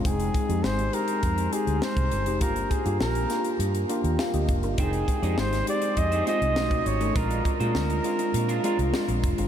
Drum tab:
HH |xxxx-xxxxxxx-xxx|xxxx-xxxxxxx-xxx|xxxx-xxxxxxx-xxx|xxxx-xxxxxxx-xxx|
SD |----o-------o---|----o-o-----o---|----oo------o---|----o-------o---|
BD |o-o-----o----o--|o-o-----------o-|o-o-----o----o--|o-o-----------o-|